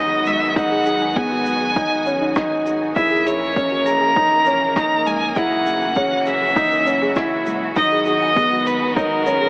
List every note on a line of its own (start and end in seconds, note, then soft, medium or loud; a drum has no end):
0.00 2.93 G#1 medium
0.00 2.92 D#3 medium
0.00 2.93 F#3 medium
0.00 2.92 G#3 medium
0.00 2.92 B3 medium
0.00 0.49 D#4 medium
0.00 2.93 F#4 medium
0.00 0.28 D#5 loud
0.26 0.34 G#3 medium
0.26 0.58 E5 loud
0.26 shaker medium
0.56 1.09 D#4 loud
0.56 0.61 G#4 medium
0.56 1.18 F#5 loud
0.56 kick loud
0.56 shaker medium
0.71 0.83 G#4 loud
0.86 0.94 G#4 loud
0.86 shaker medium
1.01 1.09 G#5 medium
1.16 1.69 B3 medium
1.16 1.21 G#4 medium
1.16 2.66 G#5 loud
1.16 kick loud
1.16 shaker medium
1.31 1.36 F#4 medium
1.46 1.58 G#4 medium
1.46 shaker medium
1.61 1.73 G#4 medium
1.76 2.02 D#4 medium
1.76 1.81 C#5 medium
1.76 kick loud
1.76 shaker medium
1.91 2.03 D#5 loud
2.06 2.32 C#4 medium
2.06 2.14 B4 medium
2.06 shaker medium
2.21 2.33 D#4 loud
2.36 2.89 D#4 medium
2.36 2.44 C#5 medium
2.36 kick loud
2.36 cross-stick medium
2.36 shaker medium
2.51 2.63 G#5 medium
2.66 2.78 G#4 medium
2.66 shaker medium
2.81 2.86 G#5 medium
2.96 5.33 A#1 medium
2.96 5.34 C#3 medium
2.96 5.33 E3 medium
2.96 7.72 A#3 medium
2.96 3.49 E4 loud
2.96 3.01 G#4 medium
2.96 5.34 A#4 medium
2.96 3.28 E5 loud
2.96 kick loud
2.96 shaker medium
3.11 3.23 G#4 loud
3.26 3.34 G#4 loud
3.26 3.87 C#5 loud
3.26 shaker medium
3.41 3.49 G#5 medium
3.56 4.09 C#4 medium
3.56 3.61 G#4 medium
3.56 kick loud
3.56 shaker medium
3.71 3.76 F#4 medium
3.86 3.98 G#4 medium
3.86 4.76 A#5 loud
3.86 shaker medium
4.01 4.13 G#4 medium
4.16 4.43 D#4 medium
4.16 4.21 C#5 medium
4.16 kick loud
4.16 shaker medium
4.31 4.39 A#4 medium
4.45 4.73 C#4 medium
4.45 4.54 A#4 medium
4.45 shaker medium
4.61 4.69 G#4 medium
4.76 5.29 D#4 medium
4.76 4.84 G#5 medium
4.76 5.08 A#5 loud
4.76 kick loud
4.76 cross-stick medium
4.76 shaker medium
5.06 5.14 G#3 medium
5.06 5.39 G#5 loud
5.06 shaker medium
5.36 7.73 F#1 medium
5.36 7.74 E3 medium
5.36 9.49 F#3 medium
5.36 7.74 C#4 medium
5.36 5.89 E4 loud
5.36 9.49 F#4 medium
5.36 5.41 G#4 medium
5.36 6.29 F#5 loud
5.36 kick loud
5.36 shaker medium
5.51 5.63 G#4 loud
5.66 5.74 G#4 loud
5.66 shaker medium
5.82 5.90 G#5 medium
5.96 6.49 C#4 medium
5.96 6.01 G#4 medium
5.96 kick loud
5.96 shaker medium
6.12 6.16 F#4 medium
6.26 6.39 G#4 medium
6.26 7.47 E5 loud
6.26 shaker medium
6.41 6.53 G#4 medium
6.56 6.83 D#4 loud
6.56 6.62 C#5 medium
6.56 kick loud
6.56 shaker medium
6.72 6.80 A#4 medium
6.86 7.12 C#4 medium
6.86 6.95 A#4 medium
6.86 shaker medium
7.02 7.10 G#4 medium
7.16 7.69 E4 medium
7.16 7.25 G#5 medium
7.16 kick loud
7.16 cross-stick medium
7.16 shaker medium
7.46 7.55 G#3 medium
7.46 shaker medium
7.75 9.49 G#1 medium
7.75 9.49 D#3 medium
7.75 9.49 G#3 medium
7.75 9.49 B3 medium
7.75 8.29 D#4 loud
7.75 7.81 G#4 medium
7.75 8.04 D#5 loud
7.75 kick loud
7.75 shaker medium
7.92 8.04 G#4 loud
8.05 8.14 G#4 loud
8.05 8.67 D#5 loud
8.05 shaker medium
8.22 8.30 G#5 medium
8.36 8.89 B3 medium
8.36 8.41 G#4 medium
8.36 kick medium
8.36 shaker medium
8.51 8.56 F#4 medium
8.66 8.78 G#4 medium
8.66 8.97 B4 loud
8.66 shaker medium
8.82 8.94 G#4 medium
8.96 9.23 D#4 medium
8.96 9.49 A#4 loud
8.96 9.01 C#5 medium
8.96 kick loud
8.96 shaker medium
9.11 9.19 B4 medium
9.26 9.49 C#4 medium
9.26 9.34 B4 medium
9.26 shaker medium
9.41 9.49 G#4 medium